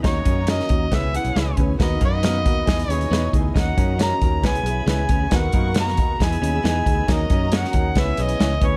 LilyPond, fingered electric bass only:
\new Staff \with { instrumentName = "Fingered electric bass" } { \clef bass \time 4/4 \key dis \phrygian \tempo 4 = 136 dis,8 fis,4 dis,8 cis,8. b,,16 cis,8 d,8 | dis,8 fis,4 dis,8 e,8 dis,8 e,8 d,8 | dis,8 fis,4 dis,8 cis,8 b,,8 cis,8 d,8 | dis,8 fis,4 dis,8 e,8 dis,8 e,8 d,8 |
dis,8 fis,4 dis,8 cis,8 b,,8 cis,8 d,8 | }